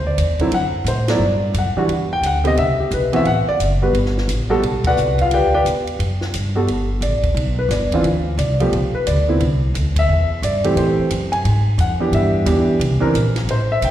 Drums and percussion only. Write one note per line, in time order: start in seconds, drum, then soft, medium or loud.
0.18 hi-hat pedal medium
0.18 ride medium
0.39 kick soft
0.39 ride soft
0.52 ride medium
0.86 hi-hat pedal medium
0.86 ride medium
1.08 snare medium
1.08 ride medium
1.54 hi-hat pedal soft
1.54 ride medium
1.89 ride medium
2.23 hi-hat pedal medium
2.23 ride medium
2.45 ride soft
2.57 ride soft
2.91 hi-hat pedal soft
2.91 ride medium
3.13 ride soft
3.25 ride soft
3.60 hi-hat pedal medium
3.60 ride medium
3.95 ride soft
4.06 snare soft
4.18 snare soft
4.29 hi-hat pedal medium
4.29 ride medium
4.63 ride medium
4.84 kick medium
4.84 ride medium
4.97 hi-hat pedal medium
5.18 kick soft
5.18 ride soft
5.31 ride medium
5.66 hi-hat pedal medium
5.66 ride medium
5.87 ride soft
6.00 ride medium
6.21 snare soft
6.34 hi-hat pedal medium
6.34 ride medium
6.68 ride soft
7.02 hi-hat pedal soft
7.02 ride medium
7.23 kick medium
7.23 ride soft
7.37 ride medium
7.70 snare soft
7.70 hi-hat pedal medium
7.70 ride medium
7.92 kick medium
7.92 ride soft
8.04 ride medium
8.39 hi-hat pedal medium
8.39 ride medium
8.60 ride soft
8.73 ride medium
9.07 hi-hat pedal medium
9.07 ride medium
9.40 ride medium
9.75 hi-hat pedal medium
9.75 ride medium
9.96 kick medium
9.96 ride medium
10.43 hi-hat pedal medium
10.43 ride medium
10.64 ride soft
10.77 ride medium
11.10 hi-hat pedal soft
11.10 ride medium
11.33 ride soft
11.45 ride medium
11.79 hi-hat pedal medium
11.79 ride medium
12.13 ride medium
12.46 hi-hat pedal soft
12.46 ride medium
12.81 ride medium
13.15 hi-hat pedal medium
13.15 ride medium
13.36 snare soft
13.36 ride soft
13.49 ride medium
13.82 hi-hat pedal soft
13.82 ride medium